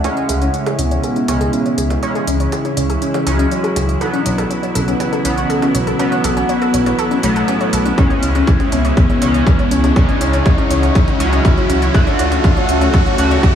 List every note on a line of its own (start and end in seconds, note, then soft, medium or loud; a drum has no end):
0.00 3.97 E4 medium
0.00 5.60 E5 medium
0.00 1.23 F#5 medium
0.04 1.25 C#3 medium
0.04 13.55 E3 medium
0.04 3.97 G#3 medium
0.04 1.25 G#3 medium
0.04 0.80 C#4 loud
0.04 3.97 C#4 medium
0.04 1.25 C#4 medium
0.04 0.15 C#4 loud
0.04 4.01 C#4 medium
0.04 13.55 E4 medium
0.04 3.97 C#5 medium
0.04 3.97 E5 medium
0.04 closed hi-hat soft
0.04 riser medium
0.04 low conga medium
0.17 0.21 C#5 medium
0.17 closed hi-hat soft
0.29 0.49 C#2 loud
0.29 0.40 G#4 loud
0.29 closed hi-hat loud
0.42 0.52 C#4 loud
0.42 5.18 G#4 medium
0.42 closed hi-hat soft
0.54 0.58 C#5 medium
0.54 closed hi-hat soft
0.66 0.77 G#4 loud
0.66 closed hi-hat soft
0.66 low conga medium
0.79 0.99 C#2 medium
0.79 2.18 B3 loud
0.79 0.90 C#4 loud
0.79 closed hi-hat loud
0.91 0.96 C#5 medium
0.91 closed hi-hat soft
1.03 1.14 G#4 loud
1.03 closed hi-hat soft
1.16 1.27 C#4 loud
1.16 closed hi-hat soft
1.22 4.01 C#5 medium
1.28 1.48 C#2 medium
1.28 2.00 C#3 medium
1.28 2.00 G#3 medium
1.28 2.00 C#4 medium
1.28 1.33 C#5 medium
1.28 closed hi-hat loud
1.28 low conga medium
1.41 1.51 G#4 loud
1.41 closed hi-hat soft
1.53 1.64 C#4 loud
1.53 closed hi-hat soft
1.66 1.70 C#5 medium
1.66 closed hi-hat soft
1.78 1.98 C#2 loud
1.78 1.89 G#4 loud
1.78 closed hi-hat loud
1.90 2.01 C#4 loud
1.90 closed hi-hat soft
1.90 low conga medium
2.03 3.24 C#3 medium
2.03 3.24 G#3 medium
2.03 3.24 C#4 medium
2.03 2.07 C#5 medium
2.03 closed hi-hat soft
2.15 2.26 G#4 loud
2.15 closed hi-hat soft
2.27 2.47 C#2 medium
2.27 3.28 C#4 loud
2.27 2.38 C#4 loud
2.27 closed hi-hat loud
2.40 2.44 C#5 medium
2.40 closed hi-hat soft
2.52 2.63 G#4 loud
2.52 closed hi-hat soft
2.52 low conga medium
2.65 2.76 C#4 loud
2.65 closed hi-hat soft
2.77 2.97 C#2 loud
2.77 2.81 C#5 medium
2.77 closed hi-hat loud
2.90 3.00 G#4 loud
2.90 closed hi-hat soft
3.02 3.13 C#4 loud
3.02 closed hi-hat soft
3.14 3.19 C#5 medium
3.14 closed hi-hat soft
3.14 low conga medium
3.26 3.46 C#2 medium
3.26 3.98 C#3 medium
3.26 3.98 G#3 medium
3.26 3.98 C#4 loud
3.26 4.03 F#4 loud
3.26 3.37 G#4 loud
3.26 closed hi-hat loud
3.39 3.50 C#4 medium
3.39 closed hi-hat soft
3.51 3.56 C#5 medium
3.51 closed hi-hat soft
3.64 3.75 G#4 loud
3.64 closed hi-hat soft
3.76 3.96 C#2 loud
3.76 3.87 C#4 loud
3.76 closed hi-hat loud
3.76 low conga medium
3.89 3.93 C#5 medium
3.89 closed hi-hat soft
4.01 5.22 B2 medium
4.01 5.22 F#3 medium
4.01 7.94 B3 medium
4.01 5.22 B3 medium
4.01 9.01 B3 medium
4.01 4.66 D4 loud
4.01 7.94 F#4 medium
4.01 4.12 A4 loud
4.01 11.90 C#5 medium
4.01 7.94 F#5 medium
4.01 closed hi-hat soft
4.13 4.24 C#4 loud
4.13 closed hi-hat soft
4.26 4.46 B1 loud
4.26 8.62 F#4 medium
4.26 4.30 C#5 medium
4.26 closed hi-hat loud
4.38 4.49 A4 loud
4.38 closed hi-hat soft
4.38 low conga medium
4.50 4.61 C#4 loud
4.50 closed hi-hat soft
4.63 4.67 C#5 medium
4.63 closed hi-hat soft
4.75 4.95 B1 loud
4.75 6.26 C#4 loud
4.75 4.86 A4 loud
4.75 closed hi-hat loud
4.88 4.99 C#4 loud
4.88 closed hi-hat soft
5.00 5.04 C#5 medium
5.00 closed hi-hat soft
5.00 low conga medium
5.13 5.23 A4 loud
5.13 closed hi-hat soft
5.25 5.45 B1 medium
5.25 5.97 B2 medium
5.25 5.97 F#3 medium
5.25 5.97 B3 medium
5.25 5.36 C#4 loud
5.25 closed hi-hat loud
5.37 5.42 C#5 medium
5.37 closed hi-hat soft
5.50 5.61 A4 loud
5.50 closed hi-hat soft
5.62 5.73 C#4 loud
5.62 closed hi-hat soft
5.62 low conga medium
5.74 5.94 B1 loud
5.74 5.79 C#5 medium
5.74 closed hi-hat loud
5.87 5.98 A4 loud
5.87 closed hi-hat soft
5.99 7.20 B2 medium
5.99 7.20 F#3 medium
5.99 7.20 B3 medium
5.99 6.10 C#4 loud
5.99 closed hi-hat soft
6.12 6.16 C#5 medium
6.12 closed hi-hat soft
6.24 6.44 B1 medium
6.24 7.14 B3 loud
6.24 6.35 A4 loud
6.24 closed hi-hat loud
6.24 low conga medium
6.37 6.47 C#4 loud
6.37 closed hi-hat soft
6.49 6.53 C#5 medium
6.49 closed hi-hat soft
6.62 6.72 A4 loud
6.62 closed hi-hat soft
6.74 6.94 B1 loud
6.74 6.85 C#4 loud
6.74 closed hi-hat loud
6.86 6.91 C#5 medium
6.86 closed hi-hat soft
6.86 low conga medium
6.99 7.09 A4 loud
6.99 closed hi-hat soft
7.11 7.22 C#4 loud
7.11 closed hi-hat soft
7.23 7.43 B1 medium
7.23 7.95 B2 medium
7.23 7.95 F#3 medium
7.23 7.88 A3 loud
7.23 7.95 B3 loud
7.23 7.28 C#5 medium
7.23 closed hi-hat loud
7.36 7.47 A4 loud
7.36 closed hi-hat soft
7.48 7.59 C#4 loud
7.48 closed hi-hat soft
7.48 low conga medium
7.61 7.65 C#5 medium
7.61 closed hi-hat soft
7.73 7.93 B1 loud
7.73 7.84 A4 loud
7.73 closed hi-hat loud
7.86 7.96 C#4 loud
7.86 closed hi-hat soft
7.98 9.19 C#3 medium
7.98 9.19 G#3 medium
7.98 11.91 G#3 medium
7.98 11.94 C#4 loud
7.98 9.19 C#4 medium
7.98 8.09 C#4 loud
7.98 8.62 C#4 loud
7.98 11.91 C#4 medium
7.98 11.91 E4 medium
7.98 9.94 E5 medium
7.98 kick loud
7.98 closed hi-hat soft
7.98 low conga medium
8.10 8.15 C#5 medium
8.10 closed hi-hat soft
8.23 8.43 C#2 loud
8.23 8.30 C#4 medium
8.23 closed hi-hat loud
8.35 8.46 C#4 loud
8.35 closed hi-hat soft
8.46 11.95 G#4 medium
8.46 8.52 C#5 medium
8.46 kick loud
8.46 closed hi-hat soft
8.52 13.53 C#6 medium
8.60 8.67 C#4 medium
8.60 closed hi-hat soft
8.60 low conga medium
8.72 8.92 C#2 loud
8.72 10.11 B3 loud
8.72 8.83 C#4 loud
8.72 closed hi-hat loud
8.85 8.89 C#5 medium
8.85 closed hi-hat soft
8.97 9.04 C#4 medium
8.97 kick loud
8.97 closed hi-hat soft
9.10 9.20 C#4 loud
9.10 closed hi-hat soft
9.22 9.42 C#2 medium
9.22 9.93 C#3 medium
9.22 9.93 G#3 medium
9.22 9.93 C#4 medium
9.22 9.26 C#5 medium
9.22 closed hi-hat loud
9.22 low conga medium
9.34 9.41 C#4 medium
9.34 closed hi-hat soft
9.47 9.57 C#4 loud
9.47 kick loud
9.47 closed hi-hat soft
9.59 9.63 C#5 medium
9.59 closed hi-hat soft
9.71 9.91 C#2 loud
9.71 9.79 C#4 medium
9.71 closed hi-hat loud
9.76 13.55 E5 medium
9.84 9.95 C#4 loud
9.84 closed hi-hat soft
9.84 low conga medium
9.96 11.17 C#3 medium
9.96 11.17 G#3 medium
9.96 11.17 C#4 medium
9.96 10.01 C#5 medium
9.96 13.55 F#5 medium
9.96 kick loud
9.96 closed hi-hat soft
10.09 10.16 C#4 medium
10.09 closed hi-hat soft
10.21 10.41 C#2 loud
10.21 10.32 C#4 loud
10.21 11.22 C#4 loud
10.21 closed hi-hat loud
10.33 10.38 C#5 medium
10.33 closed hi-hat soft
10.46 10.53 C#4 medium
10.46 kick loud
10.46 closed hi-hat soft
10.46 low conga medium
10.58 10.69 C#4 loud
10.58 closed hi-hat soft
10.70 10.90 C#2 loud
10.70 10.75 C#5 medium
10.70 closed hi-hat loud
10.83 10.90 C#4 medium
10.83 closed hi-hat soft
10.95 11.06 C#4 loud
10.95 kick loud
10.95 closed hi-hat soft
11.08 11.12 C#5 medium
11.08 closed hi-hat soft
11.08 low conga medium
11.20 11.40 C#2 medium
11.20 11.92 C#3 medium
11.20 11.92 G#3 medium
11.20 11.27 C#4 medium
11.20 11.92 C#4 loud
11.20 11.96 F#4 loud
11.20 closed hi-hat loud
11.32 11.43 C#4 loud
11.32 closed hi-hat soft
11.45 11.49 C#5 medium
11.45 kick loud
11.45 closed hi-hat soft
11.57 11.64 C#4 medium
11.57 closed hi-hat soft
11.70 11.90 C#2 loud
11.70 11.80 C#4 loud
11.70 closed hi-hat loud
11.70 low conga medium
11.82 11.86 C#5 medium
11.82 closed hi-hat soft
11.94 13.16 D3 medium
11.94 13.15 A3 medium
11.94 13.55 A3 medium
11.94 12.02 C#4 medium
11.94 12.59 D4 loud
11.94 13.16 F#4 loud
11.94 13.55 F#4 medium
11.94 13.55 A5 medium
11.94 kick loud
11.94 closed hi-hat soft
12.07 12.18 C#4 loud
12.07 closed hi-hat soft
12.19 12.39 D2 loud
12.19 12.24 C#5 medium
12.19 closed hi-hat loud
12.32 12.39 C#4 medium
12.32 closed hi-hat soft
12.32 low conga medium
12.44 12.55 C#4 loud
12.44 kick loud
12.44 closed hi-hat soft
12.57 13.55 A4 medium
12.57 12.61 C#5 medium
12.57 closed hi-hat soft
12.69 12.89 D2 loud
12.69 12.76 C#4 medium
12.69 13.55 C#4 loud
12.69 closed hi-hat loud
12.81 12.92 C#4 loud
12.81 closed hi-hat soft
12.94 12.98 C#5 medium
12.94 kick loud
12.94 closed hi-hat soft
12.94 low conga loud
13.06 13.13 C#4 medium
13.06 13.55 F#5 medium
13.06 closed hi-hat soft
13.18 13.38 D2 medium
13.18 13.55 D3 medium
13.18 13.55 A3 medium
13.18 13.29 C#4 loud
13.18 13.55 F#4 medium
13.18 closed hi-hat loud
13.31 13.35 C#5 medium
13.31 closed hi-hat soft
13.43 13.50 C#4 medium
13.43 kick loud
13.43 closed hi-hat soft